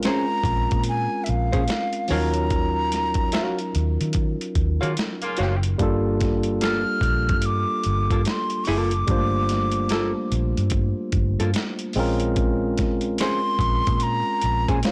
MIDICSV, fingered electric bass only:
0, 0, Header, 1, 2, 480
1, 0, Start_track
1, 0, Key_signature, -2, "minor"
1, 0, Tempo, 821918
1, 1462, Time_signature, 4, 2, 24, 8
1, 8711, End_track
2, 0, Start_track
2, 0, Title_t, "Fingered electric bass"
2, 0, Program_c, 0, 33
2, 260, Note_on_c, 0, 34, 89
2, 387, Note_off_c, 0, 34, 0
2, 424, Note_on_c, 0, 46, 98
2, 622, Note_off_c, 0, 46, 0
2, 752, Note_on_c, 0, 34, 85
2, 874, Note_off_c, 0, 34, 0
2, 902, Note_on_c, 0, 46, 102
2, 975, Note_off_c, 0, 46, 0
2, 1231, Note_on_c, 0, 39, 89
2, 1964, Note_off_c, 0, 39, 0
2, 2193, Note_on_c, 0, 39, 92
2, 2314, Note_off_c, 0, 39, 0
2, 2342, Note_on_c, 0, 51, 95
2, 2541, Note_off_c, 0, 51, 0
2, 2665, Note_on_c, 0, 39, 82
2, 2790, Note_off_c, 0, 39, 0
2, 2818, Note_on_c, 0, 51, 89
2, 2893, Note_off_c, 0, 51, 0
2, 3153, Note_on_c, 0, 30, 105
2, 3352, Note_off_c, 0, 30, 0
2, 3389, Note_on_c, 0, 31, 95
2, 3990, Note_off_c, 0, 31, 0
2, 4099, Note_on_c, 0, 34, 94
2, 4263, Note_on_c, 0, 43, 98
2, 4272, Note_off_c, 0, 34, 0
2, 4461, Note_off_c, 0, 43, 0
2, 4591, Note_on_c, 0, 31, 88
2, 4713, Note_off_c, 0, 31, 0
2, 4739, Note_on_c, 0, 43, 96
2, 4813, Note_off_c, 0, 43, 0
2, 5071, Note_on_c, 0, 30, 87
2, 5271, Note_off_c, 0, 30, 0
2, 5307, Note_on_c, 0, 31, 102
2, 5909, Note_off_c, 0, 31, 0
2, 6027, Note_on_c, 0, 34, 92
2, 6151, Note_off_c, 0, 34, 0
2, 6177, Note_on_c, 0, 43, 102
2, 6378, Note_off_c, 0, 43, 0
2, 6503, Note_on_c, 0, 31, 94
2, 6629, Note_off_c, 0, 31, 0
2, 6657, Note_on_c, 0, 43, 87
2, 6732, Note_off_c, 0, 43, 0
2, 6984, Note_on_c, 0, 34, 101
2, 7721, Note_off_c, 0, 34, 0
2, 7940, Note_on_c, 0, 34, 86
2, 8067, Note_off_c, 0, 34, 0
2, 8107, Note_on_c, 0, 46, 90
2, 8304, Note_off_c, 0, 46, 0
2, 8431, Note_on_c, 0, 34, 81
2, 8553, Note_off_c, 0, 34, 0
2, 8582, Note_on_c, 0, 46, 103
2, 8655, Note_off_c, 0, 46, 0
2, 8711, End_track
0, 0, End_of_file